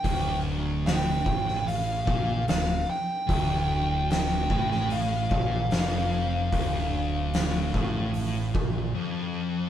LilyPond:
<<
  \new Staff \with { instrumentName = "Lead electric guitar" } { \time 4/4 \key d \minor \tempo 4 = 74 g''8 r8 g''4 f''4 f''8 g''8~ | g''4 g''4 f''2~ | f''2. r4 | }
  \new Staff \with { instrumentName = "Distorted electric guitar" } { \clef bass \time 4/4 \key d \minor d,4. a,4 bes,8 d,8 r8 | d,4. a,4 bes,8 f,4 | d,4. a,4 bes,8 f,4 | }
  \new Staff \with { instrumentName = "Distorted electric guitar" } { \clef bass \time 4/4 \key d \minor d,4. a,4 bes,8 d,8 r8 | d,4. a,4 bes,8 f,4 | d,4. a,4 bes,8 f,4 | }
  \new Staff \with { instrumentName = "Fingered electric bass" } { \clef bass \time 4/4 \key d \minor d,,4. a,,4 bes,,8 d,,8 r8 | d,,4. a,,4 bes,,8 f,,4 | d,,4. a,,4 bes,,8 r4 | }
  \new DrumStaff \with { instrumentName = "Drums" } \drummode { \time 4/4 <hho bd>4 <hho sn>8 bd16 sn16 hho8 bd8 <hho sn>4 | <hho bd>4 <hho sn>8 bd16 sn16 hho8 bd8 <hho sn>4 | <hho bd>4 <hho sn>8 bd8 hho8 bd8 r4 | }
>>